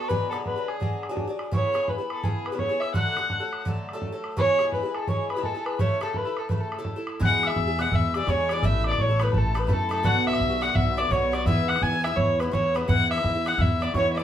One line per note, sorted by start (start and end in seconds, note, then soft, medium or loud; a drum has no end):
0.00 0.10 B3 medium
0.00 0.10 A4 medium
0.04 0.11 C#6 medium
0.09 0.31 B2 medium
0.09 0.32 F#3 medium
0.09 0.32 D4 medium
0.09 0.33 G#4 medium
0.09 0.30 B4 loud
0.09 0.45 B5 medium
0.09 bodhran medium
0.31 0.57 B2 medium
0.31 0.57 F#3 medium
0.31 0.56 D4 medium
0.31 0.55 G#4 medium
0.31 0.37 A4 medium
0.31 bodhran medium
0.45 0.70 B4 medium
0.45 0.70 B5 medium
0.45 bodhran medium
0.56 0.80 F#3 soft
0.56 0.81 D4 soft
0.56 0.81 G#4 soft
0.68 1.04 G#4 medium
0.68 1.04 G#5 medium
0.68 bodhran medium
0.80 1.10 B2 medium
0.80 1.10 F#3 medium
0.80 1.09 D4 medium
0.80 1.08 G#4 medium
0.80 bodhran medium
1.03 bodhran medium
1.09 1.29 B2 medium
1.09 1.28 F#3 medium
1.09 1.28 D4 medium
1.09 1.26 G#4 medium
1.17 bodhran medium
1.27 1.52 F#3 soft
1.27 1.53 D4 medium
1.27 1.52 G#4 medium
1.39 bodhran medium
1.51 1.72 C#3 medium
1.51 1.73 B3 medium
1.51 1.74 E4 medium
1.51 1.74 G#4 medium
1.51 1.90 C#5 medium
1.51 1.90 C#6 medium
1.51 bodhran medium
1.73 1.99 C#3 medium
1.73 1.99 B3 medium
1.73 1.98 E4 medium
1.73 1.97 G#4 medium
1.73 bodhran medium
1.88 2.11 B4 medium
1.88 2.25 B5 medium
1.88 bodhran medium
1.98 2.23 B3 soft
1.98 2.24 E4 soft
1.98 2.23 G#4 soft
2.10 2.26 A4 medium
2.10 bodhran medium
2.23 2.53 C#3 medium
2.23 2.52 B3 medium
2.23 2.52 E4 medium
2.23 2.48 G#4 medium
2.23 2.51 G#4 medium
2.23 2.48 G#5 medium
2.23 bodhran medium
2.46 2.60 B4 medium
2.46 2.57 B5 medium
2.46 bodhran medium
2.52 2.71 C#3 medium
2.52 2.70 B3 medium
2.52 2.70 E4 medium
2.52 2.68 G#4 medium
2.58 2.81 C#5 loud
2.58 2.82 C#6 medium
2.58 bodhran medium
2.69 2.94 B3 soft
2.69 2.95 E4 soft
2.69 2.94 G#4 medium
2.80 2.93 E5 loud
2.80 2.97 E6 medium
2.80 bodhran medium
2.94 3.15 D3 medium
2.94 3.16 F#3 medium
2.94 3.17 A3 medium
2.94 3.17 A4 medium
2.94 3.62 F#5 loud
2.94 3.66 F#6 medium
2.94 bodhran medium
3.16 3.41 D3 medium
3.16 3.41 F#3 medium
3.16 3.40 A3 medium
3.16 3.39 A4 medium
3.16 bodhran medium
3.30 bodhran medium
3.40 3.65 F#3 soft
3.40 3.66 A3 medium
3.40 3.65 A4 medium
3.53 bodhran medium
3.65 3.94 D3 medium
3.65 3.94 F#3 medium
3.65 3.93 A3 medium
3.65 3.92 A4 medium
3.65 bodhran medium
3.89 bodhran medium
3.93 4.13 D3 medium
3.93 4.13 F#3 medium
3.93 4.13 A3 medium
3.93 4.11 A4 medium
4.02 bodhran medium
4.12 4.37 F#3 soft
4.12 4.37 A3 medium
4.12 4.37 A4 medium
4.24 bodhran medium
4.37 4.57 B2 medium
4.37 4.59 G#3 medium
4.37 4.59 E4 medium
4.37 4.60 G#4 medium
4.37 4.71 C#5 loud
4.37 4.58 C#6 medium
4.37 bodhran medium
4.59 4.84 B2 medium
4.59 4.84 G#3 medium
4.59 4.84 E4 medium
4.59 4.82 G#4 medium
4.59 4.71 C#6 medium
4.59 bodhran medium
4.72 4.88 B4 medium
4.72 4.97 B5 medium
4.72 bodhran medium
4.83 5.07 G#3 soft
4.83 5.09 E4 soft
4.83 5.08 G#4 soft
4.88 4.97 B4 medium
4.95 5.10 A4 medium
4.95 5.08 A5 medium
4.95 bodhran medium
5.07 5.37 B2 medium
5.07 5.37 G#3 medium
5.07 5.36 E4 medium
5.07 5.35 G#4 medium
5.07 5.30 C#5 medium
5.07 5.29 C#6 medium
5.07 bodhran medium
5.30 5.47 B4 medium
5.30 5.44 B5 medium
5.30 bodhran medium
5.36 5.56 B2 medium
5.36 5.56 G#3 medium
5.36 5.55 E4 medium
5.36 5.53 G#4 medium
5.43 5.67 A4 medium
5.43 5.80 A5 medium
5.43 bodhran medium
5.54 5.79 G#3 soft
5.54 5.79 E4 medium
5.54 5.79 G#4 medium
5.66 5.82 B4 medium
5.66 bodhran medium
5.79 5.99 C#3 medium
5.79 6.00 A3 medium
5.79 6.01 E4 medium
5.79 6.02 A4 medium
5.79 6.02 C#5 loud
5.79 6.04 C#6 medium
5.79 bodhran loud
6.01 6.26 C#3 medium
6.01 6.26 A3 medium
6.01 6.26 E4 medium
6.01 6.19 A4 medium
6.01 6.24 A4 medium
6.01 6.18 A5 medium
6.01 bodhran medium
6.14 6.40 B4 medium
6.14 6.40 B5 medium
6.14 bodhran medium
6.25 6.49 A3 soft
6.25 6.50 E4 soft
6.25 6.50 A4 soft
6.37 6.50 A4 medium
6.37 6.47 A5 medium
6.37 bodhran medium
6.49 6.79 C#3 medium
6.49 6.78 A3 medium
6.49 6.78 E4 medium
6.49 6.77 A4 medium
6.49 6.62 B4 medium
6.49 bodhran medium
6.60 6.74 A4 medium
6.60 6.73 A5 medium
6.72 bodhran medium
6.78 6.98 C#3 medium
6.78 6.97 A3 medium
6.78 6.96 E4 medium
6.78 6.95 A4 medium
6.85 bodhran medium
6.96 7.20 A3 soft
6.96 7.20 E4 medium
6.96 7.21 A4 medium
7.07 bodhran medium
7.20 7.55 E2 loud
7.20 7.67 B2 medium
7.20 7.68 G#3 medium
7.20 7.69 E4 medium
7.20 7.66 G#4 medium
7.20 7.46 F#6 medium
7.20 bodhran medium
7.25 7.49 F#5 loud
7.43 7.81 E6 medium
7.43 bodhran medium
7.47 7.83 E5 loud
7.47 bodhran medium
7.56 7.90 E2 medium
7.56 bodhran medium
7.67 7.78 G#3 soft
7.67 7.79 E4 soft
7.67 7.79 G#4 medium
7.78 8.13 B2 medium
7.78 8.14 G#3 medium
7.78 8.15 E4 medium
7.78 8.16 G#4 medium
7.78 7.97 F#5 loud
7.78 7.92 F#6 medium
7.78 bodhran medium
7.91 8.26 E2 loud
7.91 8.16 E5 medium
7.91 8.29 E6 medium
7.91 bodhran medium
8.14 8.26 B2 medium
8.14 8.27 G#3 medium
8.14 8.28 E4 medium
8.14 8.28 G#4 medium
8.14 8.32 D5 loud
8.14 bodhran medium
8.27 8.61 E2 medium
8.27 8.49 B2 medium
8.27 8.50 G#3 medium
8.27 8.50 E4 medium
8.27 8.51 G#4 medium
8.27 8.54 C#5 loud
8.27 8.50 C#6 medium
8.27 bodhran medium
8.49 8.62 B2 medium
8.49 8.64 G#3 medium
8.49 8.63 E4 medium
8.49 8.65 G#4 medium
8.49 8.67 D5 loud
8.49 8.64 D6 medium
8.49 bodhran medium
8.62 8.96 A1 loud
8.62 9.10 B2 medium
8.62 9.10 A3 medium
8.62 9.09 E4 medium
8.62 9.08 A4 medium
8.62 8.87 E5 loud
8.62 8.87 E6 medium
8.62 bodhran medium
8.84 9.03 D5 medium
8.84 8.98 D6 medium
8.84 bodhran medium
8.92 bodhran medium
8.98 9.32 A1 medium
8.98 9.24 C#5 medium
8.98 9.21 C#6 medium
8.98 bodhran medium
9.09 9.19 A3 soft
9.09 9.20 E4 medium
9.09 9.21 A4 medium
9.19 9.53 B2 medium
9.19 9.54 A3 medium
9.19 9.55 E4 medium
9.19 9.56 A4 medium
9.19 9.40 B4 loud
9.19 9.33 B5 medium
9.19 bodhran medium
9.32 9.67 A1 loud
9.32 9.58 A5 medium
9.32 bodhran medium
9.38 9.60 A4 medium
9.54 9.66 B2 medium
9.54 9.67 A3 medium
9.54 9.68 E4 medium
9.54 9.69 A4 medium
9.54 9.70 B5 medium
9.54 bodhran medium
9.59 9.75 B4 loud
9.67 10.02 F#2 loud
9.67 9.88 B2 medium
9.67 9.89 A3 medium
9.67 9.90 E4 medium
9.67 9.91 A4 medium
9.67 9.85 A5 medium
9.67 bodhran medium
9.73 9.92 A4 loud
9.86 10.02 B2 medium
9.86 9.94 B5 medium
9.90 10.03 A3 medium
9.90 10.04 E4 medium
9.90 10.05 A4 medium
9.90 10.08 A4 loud
9.90 10.06 A5 medium
9.90 bodhran medium
10.03 10.38 B1 loud
10.03 10.51 B2 medium
10.03 10.51 D3 medium
10.03 10.51 B3 medium
10.03 10.48 F#4 loud
10.03 10.27 F#5 loud
10.03 10.19 F#6 medium
10.03 bodhran medium
10.19 10.29 F#6 medium
10.27 10.64 E5 loud
10.27 10.64 E6 loud
10.27 bodhran medium
10.33 bodhran medium
10.40 10.73 B1 medium
10.40 bodhran medium
10.50 10.61 D3 soft
10.50 10.62 B3 soft
10.50 10.62 F#4 medium
10.61 10.96 B2 medium
10.61 10.97 D3 medium
10.61 10.99 B3 medium
10.61 10.99 F#4 medium
10.61 10.77 F#5 loud
10.61 10.77 F#6 medium
10.61 bodhran medium
10.75 11.09 B1 loud
10.75 10.99 E5 loud
10.75 10.97 E6 loud
10.75 bodhran medium
10.97 11.09 B2 medium
10.97 11.11 D3 medium
10.97 11.12 B3 medium
10.97 11.12 F#4 medium
10.97 11.13 D5 loud
10.97 11.12 D6 medium
10.97 bodhran medium
11.10 11.44 B1 medium
11.10 11.31 B2 medium
11.10 11.32 D3 medium
11.10 11.33 B3 medium
11.10 11.33 F#4 medium
11.10 11.35 C#5 loud
11.10 11.48 C#6 medium
11.10 bodhran medium
11.32 11.46 B2 medium
11.32 11.46 D3 medium
11.32 11.46 B3 medium
11.32 11.47 F#4 medium
11.32 11.46 D5 loud
11.32 bodhran medium
11.46 11.79 E2 loud
11.46 11.93 G#2 medium
11.46 11.93 E3 medium
11.46 11.94 B3 medium
11.46 11.92 E4 medium
11.46 11.70 E5 loud
11.46 11.71 E6 medium
11.46 bodhran medium
11.69 11.84 F#5 loud
11.69 11.84 F#6 medium
11.69 bodhran medium
11.76 bodhran medium
11.82 12.15 E2 loud
11.82 12.06 G#5 loud
11.82 12.04 G#6 medium
11.82 bodhran medium
11.93 12.04 E3 soft
11.93 12.05 B3 medium
11.93 12.04 E4 medium
12.04 12.38 G#2 medium
12.04 12.40 E3 medium
12.04 12.41 B3 medium
12.04 12.41 E4 medium
12.04 12.18 E5 loud
12.04 12.19 E6 medium
12.04 bodhran medium
12.17 12.50 E2 loud
12.17 12.41 C#5 loud
12.17 12.42 C#6 medium
12.17 bodhran medium
12.40 12.50 G#2 medium
12.40 12.52 E3 medium
12.40 12.53 B3 medium
12.40 12.53 E4 medium
12.40 12.55 B4 medium
12.40 12.54 B5 medium
12.40 bodhran medium
12.52 12.87 E2 medium
12.52 12.73 G#2 medium
12.52 12.74 E3 medium
12.52 12.75 B3 medium
12.52 12.76 E4 medium
12.52 12.78 C#5 loud
12.52 12.77 C#6 medium
12.52 bodhran medium
12.74 12.87 G#2 medium
12.74 12.87 E3 medium
12.74 12.88 B3 medium
12.74 12.88 E4 medium
12.74 12.91 B4 loud
12.74 12.88 B5 medium
12.74 bodhran medium
12.88 13.22 E2 medium
12.88 13.35 G#2 medium
12.88 13.35 E3 medium
12.88 13.35 B3 medium
12.88 13.33 E4 medium
12.88 13.10 F#5 loud
12.88 13.13 F#6 medium
12.88 bodhran medium
13.11 13.50 E5 loud
13.11 13.46 E6 loud
13.11 bodhran medium
13.18 bodhran medium
13.24 13.57 E2 medium
13.24 bodhran medium
13.34 13.45 E3 soft
13.34 13.46 B3 medium
13.34 13.46 E4 medium
13.45 13.79 G#2 medium
13.45 13.81 E3 medium
13.45 13.82 B3 medium
13.45 13.82 E4 medium
13.45 13.63 F#5 loud
13.45 13.55 F#6 medium
13.45 bodhran medium
13.55 13.92 E2 loud
13.55 13.81 E6 medium
13.55 13.60 F#6 medium
13.60 13.84 E5 loud
13.60 bodhran medium
13.81 13.93 G#2 medium
13.81 13.94 E3 medium
13.81 13.95 B3 medium
13.81 13.96 E4 medium
13.81 13.95 D5 loud
13.81 bodhran medium
13.93 14.24 E2 loud
13.93 14.16 G#2 medium
13.93 14.17 E3 medium
13.93 14.18 B3 medium
13.93 14.18 E4 medium
13.93 14.11 C#5 loud
13.93 14.17 C#6 medium
13.93 bodhran medium
14.13 14.19 E5 medium
14.13 14.24 D6 medium
14.17 14.24 G#2 medium
14.17 14.24 E3 medium
14.17 14.24 B3 medium
14.17 14.24 E4 medium
14.17 14.24 D5 medium
14.17 bodhran medium